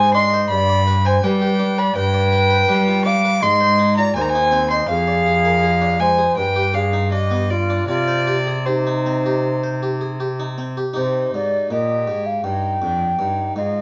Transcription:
Already playing: harpsichord G#2 G#4, cello G#2, flute C5, violin G#5
0.14 harpsichord D4, flute D#5, violin C6
0.34 harpsichord C5
0.50 harpsichord G2, cello G2, flute D5, violin B5
0.69 harpsichord D5
0.87 harpsichord B4
1.05 harpsichord C5, flute C5, violin G#5
1.24 harpsichord G3 B4, cello G3, flute B4, violin G5
1.42 harpsichord G4
1.59 harpsichord D4
1.78 harpsichord B4, flute D5, violin B5
1.96 harpsichord G2, cello G2, flute B4, violin G5
2.14 harpsichord D5
2.32 harpsichord B4
2.50 harpsichord C5
2.68 harpsichord G3 B4, cello G3
2.88 harpsichord F4
3.05 harpsichord D4, flute F5, violin D6
3.25 harpsichord B4
3.42 harpsichord G#2 G#3, cello G#2, flute D#5, violin C6
3.60 harpsichord C5
3.79 harpsichord D#4
3.97 harpsichord F4, flute D5, violin A#5
4.15 harpsichord D#2 C5, cello D#2, flute C5, violin G#5
4.22 violin A#5
4.29 violin G#5
4.35 harpsichord D#4
4.52 harpsichord C4
4.71 harpsichord C5, flute D#5, violin C6
4.89 cello F2, harpsichord F2, flute G#4, violin F5
5.07 harpsichord D5
5.26 harpsichord G#4
5.45 harpsichord A#4
5.63 harpsichord G#4
5.81 harpsichord D4
6.00 harpsichord G#3, flute C5, violin G#5
6.18 harpsichord G#4
6.37 harpsichord G2, cello G2, flute B4, violin G5
6.56 harpsichord G4
6.74 harpsichord D4, flute G#4, violin F5
6.93 harpsichord D#4
7.12 harpsichord D4, flute G4, violin D#5
7.31 harpsichord B3
7.50 flute F4, violin D5
7.70 harpsichord D4
7.88 harpsichord C3, cello C3, flute F4, violin D5
8.08 harpsichord C5
8.27 harpsichord G4
8.47 harpsichord G#4
8.66 flute D#4, harpsichord G4, violin C5
8.87 harpsichord D#4
9.06 harpsichord C4
9.26 harpsichord G4
9.63 harpsichord C5
9.83 harpsichord G4
10.01 harpsichord G#4
10.20 harpsichord G4
10.40 harpsichord D#4
10.58 harpsichord C4
10.77 harpsichord G4
10.93 cello C3, harpsichord C3 D#4 G4, violin D#4, flute C5
11.34 cello G#2, harpsichord G#2, flute D5
11.71 harpsichord A#2, cello A#2, violin G4, flute D#5
12.07 harpsichord G#2, cello G#2
12.26 flute F5
12.44 harpsichord G2, cello G2, violin D#4, flute G5
12.82 harpsichord F2, cello F2, violin D4
13.19 harpsichord G2, cello G2, violin D#4
13.56 harpsichord G#2, cello G#2, violin F4, flute D#5

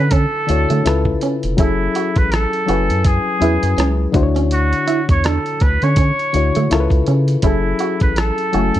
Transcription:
Already playing: analog synth bass D3, reed electric piano D3 E4 F#4, muted trumpet B4
0.11 clean electric guitar C#4, muted trumpet A4, kick, closed hi-hat
0.47 analog synth bass D2, reed electric piano D3 D4 E4 F#4 C#5, muted clean electric guitar stroke, closed hi-hat
0.70 analog synth bass D3, clean electric guitar A3, closed hi-hat
0.84 analog synth bass C#2, reed electric piano C#3 C#4 E4 F4 A4, cross-stick, closed hi-hat
0.88 reed electric piano B4
1.05 kick
1.21 clean electric guitar C#4, closed hi-hat
1.43 analog synth bass F1, closed hi-hat
1.57 analog synth bass F#1, reed electric piano F#3 C#4 E4 G#4, muted trumpet E4, clean electric guitar E4, kick, closed hi-hat
1.61 reed electric piano A4
1.95 clean electric guitar F#4, closed hi-hat
2.16 analog synth bass A1, muted trumpet B4, kick, closed hi-hat
2.32 muted trumpet A4, cross-stick, closed hi-hat
2.53 closed hi-hat
2.66 analog synth bass F#1, reed electric piano F#3 C#4 E4 G#5, clean electric guitar F#4, closed hi-hat
2.70 reed electric piano B4
2.90 analog synth bass F#2, closed hi-hat
3.04 muted trumpet G#4, kick, closed hi-hat
3.40 analog synth bass E2, reed electric piano F#3 C#4 E4 G#4 B4, clean electric guitar E4, closed hi-hat
3.63 analog synth bass F#2, closed hi-hat
3.78 analog synth bass C#2, clean electric guitar C#4, cross-stick, closed hi-hat
4.12 analog synth bass D2, reed electric piano D3 D4 E4 F#4, muted clean electric guitar stroke, kick, closed hi-hat
4.16 reed electric piano C5
4.23 reed electric piano C#5
4.36 clean electric guitar C#4, closed hi-hat
4.51 muted trumpet F#4, closed hi-hat
4.73 closed hi-hat
4.88 clean electric guitar E4, closed hi-hat
5.09 analog synth bass E2, muted trumpet C#5, kick, closed hi-hat
5.24 clean electric guitar D4, muted trumpet A4, cross-stick, closed hi-hat
5.46 closed hi-hat
5.60 analog synth bass D2, muted trumpet B4, muted clean electric guitar stroke, kick, closed hi-hat
5.82 analog synth bass D3, clean electric guitar C#4, muted trumpet C#5, closed hi-hat
5.96 clean electric guitar C#4, kick, closed hi-hat
6.19 closed hi-hat
6.33 analog synth bass D2, reed electric piano D3 D4 E4 F#4 C#5, muted clean electric guitar stroke, closed hi-hat
6.55 analog synth bass D3, clean electric guitar A3, closed hi-hat
6.70 analog synth bass C#2, reed electric piano C#3 C#4 E4 F4 A4 A#4, cross-stick, closed hi-hat
6.80 reed electric piano B4
6.90 analog synth bass C#2, kick, closed hi-hat
7.06 analog synth bass C#3, clean electric guitar C#4, closed hi-hat
7.28 closed hi-hat
7.42 analog synth bass F#1, reed electric piano F#3 C#4 E4 G#4, muted trumpet E4, clean electric guitar E4, kick, closed hi-hat
7.46 reed electric piano A4
7.79 clean electric guitar F#4, closed hi-hat
8.00 analog synth bass A1, muted trumpet B4, kick, closed hi-hat
8.16 muted trumpet A4, cross-stick, closed hi-hat
8.38 closed hi-hat
8.53 analog synth bass F#1, reed electric piano F#3 A3 C#4 E4 G#5, clean electric guitar F#4, closed hi-hat
8.74 analog synth bass F#2, closed hi-hat

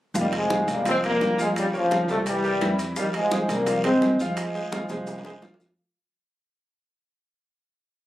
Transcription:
0.14 upright bass F1, trombone section D#3, grand piano F3 F4 F5, high bongo, high conga, long guiro, maracas
0.19 trombone section G3
0.33 trombone section F3 G#3, high bongo, high conga, high timbale, maracas
0.50 grand piano G#3 G#4 C5, high bongo, high conga, short guiro, maracas
0.68 upright bass C2, trombone section G3 A#3, high conga, high timbale, short guiro, maracas
0.85 grand piano F3 F4 F5, trombone section G#3 C4, high bongo, high conga, high timbale, long guiro, maracas
1.03 grand piano F3 G4 C5, trombone section G3 A#3, high bongo, high conga, high timbale, maracas
1.20 upright bass G1, high bongo, low bongo, high conga, low timbale, short guiro, maracas
1.38 grand piano F3 F4 F5, trombone section F3 G#3, high bongo, high conga, short guiro, maracas
1.56 trombone section C#3 G3, high bongo, high conga, high timbale, long guiro, maracas
1.73 trombone section C#3 F3, grand piano A#3 A#4 C#5, high conga, maracas
1.91 grand piano F3 F4 F5, high bongo, high conga, high timbale, short guiro, maracas
2.08 upright bass C2, trombone section F3 A3, grand piano G3 G4 A#4, high bongo, short guiro, maracas
2.26 trombone section E3 G3, high bongo, high conga, high timbale, long guiro, maracas
2.44 grand piano G3 G4 A#4, high bongo, high conga, maracas
2.61 upright bass F2, grand piano E3 E4 E5, high bongo, low bongo, high conga, high timbale, short guiro, maracas
2.79 high bongo, high conga, high timbale, short guiro, maracas
2.96 trombone section D#3 G3, grand piano F3 F4 F5, high bongo, high conga, long guiro, maracas
3.14 trombone section F3 G#3, high bongo, high conga, high timbale, maracas
3.31 grand piano G#3 G#4 C5, high bongo, high conga, short guiro, maracas
3.48 upright bass C2, trombone section G3 A#3, high conga, high timbale, short guiro, maracas
3.66 grand piano F3 F4 F5, high bongo, high conga, high timbale, long guiro, maracas
3.84 trombone section G#3 C4, grand piano G#3 G#4 C5, high bongo, high conga, high timbale, maracas
4.01 upright bass F2, high bongo, low bongo, high conga, low timbale, short guiro, maracas
4.19 grand piano F3 F4 F5, trombone section F3 G#3, high bongo, high conga, short guiro, maracas
4.37 high bongo, high conga, high timbale, long guiro, maracas
4.55 grand piano G#3 G#4 C5, high conga, maracas
4.72 grand piano F3 F4 F5, high bongo, high conga, high timbale, short guiro, maracas
4.89 upright bass C2, grand piano G#3 G#4 C5, high bongo, short guiro, maracas
5.07 high bongo, high conga, high timbale, long guiro, maracas
5.19 high timbale
5.24 grand piano G#3 G#4 C5, low bongo, high conga, maracas
5.30 high timbale
5.41 upright bass F2, grand piano F3 F4 F5, low bongo, high conga, low timbale, short guiro, maracas
5.54 low timbale
5.60 low bongo, short guiro, maracas
5.65 low timbale

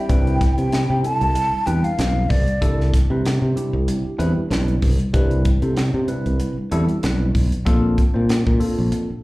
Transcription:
Already playing: flute G5
0.09 fingered electric bass C2, tine electric piano G3 C4 D4 E4 B4, kick, closed hi-hat
0.27 closed hi-hat
0.41 kick, snare, closed hi-hat
0.57 fingered electric bass C3, tine electric piano G3 C4 D4 E4 G4, flute G5, closed hi-hat
0.72 tine electric piano E4, snare, closed hi-hat
0.90 fingered electric bass C3, tine electric piano E4 B4
1.03 tine electric piano G3 C4 D4 E4 A4, flute A5, closed hi-hat
1.21 fingered electric bass C2, closed hi-hat
1.35 closed hi-hat
1.53 muted fingered electric bass stroke
1.66 fingered electric bass E2, tine electric piano G3 C4 D4 E4 B4, flute G5, closed hi-hat
1.84 tine electric piano E4 D5, flute F5, closed hi-hat
1.98 fingered electric bass B1, tine electric piano G3 C4 D4 E4 B4, snare, closed hi-hat
2.29 fingered electric bass C2, tine electric piano E4 C5, flute D5, kick, open hi-hat
2.48 closed hi-hat
2.61 fingered electric bass C2, tine electric piano G3 C4 D4 E4 A4, kick, closed hi-hat
2.80 snare
2.94 kick, snare, closed hi-hat
3.10 fingered electric bass C3, tine electric piano G3 C4 D4 E4 B4
3.26 snare, closed hi-hat
3.42 fingered electric bass C3, tine electric piano E4 B4
3.56 tine electric piano G3 C4 D4 E4 G4, closed hi-hat
3.73 fingered electric bass C2
3.88 closed hi-hat
4.05 muted fingered electric bass stroke
4.18 fingered electric bass E2, tine electric piano G3 C4 D4 E4 B4, closed hi-hat
4.36 tine electric piano E4 B4
4.50 fingered electric bass B1, tine electric piano G3 C4 D4 E4 B4, snare, closed hi-hat
4.68 closed hi-hat
4.82 fingered electric bass C2, tine electric piano E4 B4, kick, open hi-hat
4.99 closed hi-hat
5.13 fingered electric bass C2, tine electric piano G3 C4 D4 E4 B4, kick, closed hi-hat
5.31 closed hi-hat
5.45 kick, closed hi-hat
5.62 fingered electric bass C3, tine electric piano G3 C4 D4 E4 A4, closed hi-hat
5.77 tine electric piano E4 D5, snare, closed hi-hat
5.94 fingered electric bass C3, tine electric piano E4 A4
6.07 tine electric piano G3 C4 D4 E4 B4, closed hi-hat
6.26 fingered electric bass C2, closed hi-hat
6.40 closed hi-hat
6.58 muted fingered electric bass stroke
6.71 fingered electric bass E2, tine electric piano G3 C4 D4 E4 A4, closed hi-hat
6.88 tine electric piano E4 B4, closed hi-hat
7.03 fingered electric bass B1, tine electric piano G3 C4 D4 E4 B4, snare, closed hi-hat
7.34 fingered electric bass B1, tine electric piano E4 B4, kick, open hi-hat
7.52 closed hi-hat
7.65 fingered electric bass A#1, tine electric piano A#3 C4 D4 F4 A4, kick, closed hi-hat
7.98 kick, closed hi-hat
8.14 fingered electric bass A#2, tine electric piano A#3 C4 D4 F4 C5
8.29 tine electric piano F4, snare, closed hi-hat
8.46 fingered electric bass A#2, tine electric piano F4 A4, kick
8.59 tine electric piano A#3 C4 D4 F4 A4, open hi-hat
8.78 fingered electric bass A#1
8.92 closed hi-hat
9.10 muted fingered electric bass stroke

